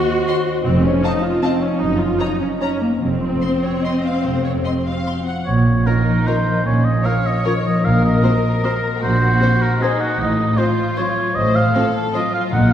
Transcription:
Already playing: D#3 C4 D#4 F#4 C5
0.09 C#5
0.28 C5 D#5 F#5 C6
0.48 D#4
0.65 F1 F2 C4
0.83 C4 C#4
1.03 D#4 D#5 F5 A5
1.23 F4
1.42 C4 D#5 F5 A5
1.62 C4 C#4
1.80 F#1 F#2 D#4
1.99 A#3 F4
2.19 C#4 D#4 C#5 A#5
2.40 C#4 D#4
2.60 C#4 C#5 A#5
2.81 A#3
3.01 F1 F2 C4
3.22 C4
3.42 F4 C5 C6
3.64 F#4 C#5
3.85 F4 D#5 C6
4.06 C4 F5
4.25 F1 F2 C5
4.45 C3 C#5
4.65 F4 D#5 C6
4.86 F#4 F5
5.06 F4 C6
5.26 C4 F#5
5.46 A#1 A#2 C#5
5.65 F3
5.86 C#4 D#4 F4 A#4
6.07 F3
6.26 D#3 C#4 F4 A#4 C5
6.47 F3
6.65 A#1 A#2 C#4 C#5
6.85 D#5
7.04 C#4 F4 A#4 C#5 F5
7.26 F3 D#5
7.45 D#3 C#4 F4 A#4 C#5
7.66 F3 D#5
7.84 A#1 A#2 A#4 F5
8.04 A#3 D#5
8.23 C4 F#4 C5
8.44 A#3
8.64 G#3 C4 F#4 A#4 C5
8.84 A#3
9.02 A#1 A#2 F#4 C5
9.22 C4
9.41 C4 F#4 C5
9.62 A#3 A#4
9.81 G#3 C4 D#4 F#4 G#4 C5
10.01 A#3 F#4
10.19 A1 A2 D#5
10.39 A3
10.57 C4 F4 C5
10.78 A3
10.96 F#3 C4 F4 C5 C#5
11.18 A3
11.36 A1 A2 C5 D#5
11.55 C4 F5
11.75 C4 F4 A4 C5
11.95 A3
12.14 F#3 C4 F4 C5 D#5
12.34 A3 F5
12.52 A#1 A#2 D#4 F#5

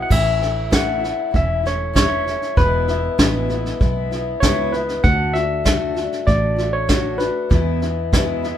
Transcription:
Already playing: B3
0.02 F#5
0.09 A1 A2 E3 A3 C#4 E4 E5, kick, snare, crash
0.39 A3 C#4 E4, snare
0.71 A2 E3 A3 C#4 E4 F#5, kick, snare, hi-hat pedal
1.00 A3 C#4 E4, snare
1.31 E1 E3 A3 C#4 E4, kick, snare
1.36 E5
1.63 A3 C#4 E4 C#5, snare
1.93 A2 E3 A3 C#4 E4 C#5, kick, snare, hi-hat pedal
2.25 A3 C#4 E4, snare
2.42 snare
2.56 E1 E2 B2 E3 G#3 B3 E4 B4, kick, snare
2.88 E3 G#3 B3 E4, snare
3.18 A1 E2 B2 E3 G#3 B3 E4, kick, snare, hi-hat pedal
3.49 E3 G#3 B3 E4, snare
3.66 snare
3.80 B1 E3 G#3 B3 E4, kick, snare
4.11 E3 G#3 B3 E4, snare
4.40 C#2 E2 B2 E3 G#3 B3 E4 C#5, kick, snare, hi-hat pedal
4.72 E3 G#3 B3 E4 B4, snare
4.89 snare
5.03 D2 D3 A3 D4 F#4 F#5, kick, snare
5.33 A3 D4 F#4 E5, snare
5.64 D3 A3 D4 F#4, kick, snare, hi-hat pedal
5.94 A3 D4 F#4, snare
6.12 snare
6.25 A1 D3 A3 D4 F#4 D5, kick, snare
6.56 A3 D4 F#4, snare
6.73 C#5
6.87 D3 A3 D4 F#4, kick, snare, hi-hat pedal
7.18 A3 D4 F#4 B4, snare
7.49 E2 B2 E3 G#3 B3 E4, kick, snare
7.80 E3 G#3 B3 E4, snare
8.12 E2 B2 E3 G#3 B3 E4, kick, snare, hi-hat pedal
8.43 E3 G#3 B3 E4, snare

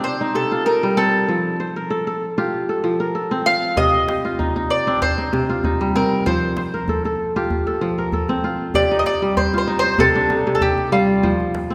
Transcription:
Already playing: C3 C4 D4 D#4 F4 G4
0.04 C5
0.21 D#4
0.35 C3 A4
0.52 F4
0.66 D#4 A#4
0.83 G3
0.97 C4 A4
1.28 F3
1.60 C5
1.76 A#4
1.90 A4
2.07 A4
2.38 F4 G4
2.69 A4
2.84 F3
3.00 A#4
3.15 A4
3.31 C4
3.46 F4 F5
3.77 C3 D#5, djembe slap, djembe bass
3.94 djembe slap, djembe tone
4.08 G4, djembe slap
4.25 F4
4.39 D#4, djembe bass
4.56 D#4, djembe tone
4.70 D5
4.87 C4 D4, djembe slap
5.02 C5, djembe slap, djembe bass
5.18 D#4
5.33 C3, djembe slap
5.49 F4
5.64 D#4, djembe bass
5.81 G3, djembe tone
5.95 C4 A#4
6.26 F3 C5, djembe slap, djembe bass
6.42 djembe slap, djembe tone
6.57 C5, djembe slap
6.74 A#4
6.88 A4, djembe bass
7.05 A4, djembe slap, djembe tone
7.36 F4 G4
7.50 djembe bass
7.67 A4, djembe tone
7.81 F3
7.98 A#4, djembe slap
8.12 A4, djembe bass
8.28 C4, djembe tone
8.44 F4
8.74 C3 G4 D5, djembe bass
8.91 D#4, djembe slap, djembe tone
8.99 D#5
9.06 D5, djembe slap
9.22 G3
9.37 C5, djembe bass
9.53 F4, djembe tone
9.58 C5
9.68 D#4, djembe slap
9.79 C5
9.84 D#4
9.98 C3 A4, djembe bass
10.15 D4, djembe tone
10.30 D#4, djembe slap
10.47 C3
10.55 A4
10.61 G4, djembe bass
10.78 djembe slap, djembe tone
10.92 G3 F4
11.23 F3 C5, djembe bass
11.40 djembe slap, djembe tone
11.55 djembe slap
11.70 C4

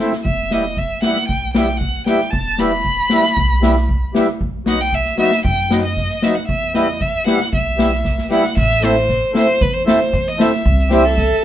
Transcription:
0.00 A3 C4 E4
0.13 snare
0.24 E1 E5, kick
0.51 G3 B3 E4 D#5, snare
0.77 E5, kick
1.02 G3 B3 E4 F#5, snare
1.16 snare
1.28 B1 G5, kick, snare
1.53 G3 B3 E4 G5, snare
1.68 snare
1.78 F#5, kick
2.06 G3 B3 E4 G5, snare
2.20 snare
2.31 E1 A5, kick
2.58 G3 B3 E4 B5, snare
2.85 kick
3.10 G3 B3 E4, snare
3.23 snare
3.36 B1, kick
3.62 G3 B3 E4, snare
3.76 snare
3.89 kick
4.14 G3 B3 E4, snare
4.41 B1, kick
4.66 F#3 B3 D#4 F#5, snare
4.81 G5
4.93 E5, kick
5.05 snare
5.17 F#3 B3 D#4 E5, snare
5.31 snare
5.44 F#2 G5, kick
5.70 F#3 B3 D#4, snare
5.85 D#5
5.97 kick, snare
6.10 snare
6.22 F#3 B3 D#4 E5, snare
6.35 F#5
6.47 E2 E5, kick
6.74 G3 B3 E4 D#5, snare
7.01 E5, kick, snare
7.26 G3 B3 E4 F#5, snare
7.40 snare
7.53 B1 E5, kick
7.77 G3 B3 E4, snare
7.92 snare
8.05 kick, snare
8.18 snare
8.30 G3 B3 E4 F#5, snare
8.44 snare
8.57 A1 E5, kick, crash
8.70 snare
8.81 A3 C4 E4 C5, snare
9.09 kick, snare
9.33 A3 C4 E4 C5, snare
9.61 E2 B4, kick
9.73 C5
9.86 A3 C4 E4 C5, snare
10.01 snare
10.13 E2, kick, snare
10.27 D#5, snare
10.38 A3 C4 E4, snare
10.42 E5
10.53 snare
10.65 C2, kick
10.79 snare
10.89 G3 C4 E4 G4, snare
11.05 A4
11.16 A4, kick, snare

